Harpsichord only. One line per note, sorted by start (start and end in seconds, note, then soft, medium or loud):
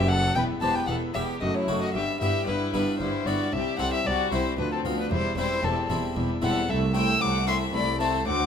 0.00 0.31 F#2 medium
0.00 0.31 E4 medium
0.36 0.59 E2 soft
0.61 0.86 E2 soft
0.61 1.00 B3 soft
0.61 1.00 G4 soft
0.89 1.12 E2 soft
1.15 1.39 E2 soft
1.15 1.34 B3 soft
1.15 1.34 G4 soft
1.41 1.65 F#2 soft
1.68 1.92 F#2 soft
1.68 1.87 A3 soft
1.68 1.87 F#4 soft
1.95 2.19 G2 soft
2.21 2.45 G2 soft
2.21 2.60 B3 soft
2.21 2.60 E4 soft
2.48 2.71 G2 soft
2.74 2.98 G2 soft
2.74 3.12 B3 soft
2.74 3.12 E4 soft
3.01 3.24 G2 soft
3.27 3.51 G2 soft
3.27 3.46 B3 soft
3.27 3.46 E4 soft
3.52 3.76 C2 soft
3.79 4.03 C2 soft
3.79 4.17 C4 soft
3.79 4.17 E4 soft
4.05 4.29 C2 soft
4.32 4.56 C2 soft
4.32 4.51 C4 soft
4.32 4.51 E4 soft
4.59 4.82 D2 soft
4.85 5.09 D2 soft
4.85 5.04 B3 soft
4.85 5.04 F4 soft
5.11 5.35 E2 soft
5.38 5.61 E2 soft
5.38 5.76 C4 soft
5.38 5.76 E4 soft
5.63 5.87 E2 soft
5.90 6.14 E2 soft
5.90 6.28 C4 soft
5.90 6.29 E4 soft
6.17 6.40 E2 soft
6.42 6.66 E2 soft
6.42 6.61 C4 soft
6.42 6.62 E4 soft
6.69 7.12 C2 soft
6.94 7.33 A3 soft
6.94 7.33 C4 soft
6.94 7.33 E4 soft
7.22 7.65 C2 soft
7.47 7.86 A3 soft
7.47 7.86 C4 soft
7.47 7.86 E4 soft
7.73 8.17 C2 soft
8.00 8.19 A3 soft
8.00 8.20 C4 soft
8.00 8.20 E4 soft
8.27 8.46 D2 soft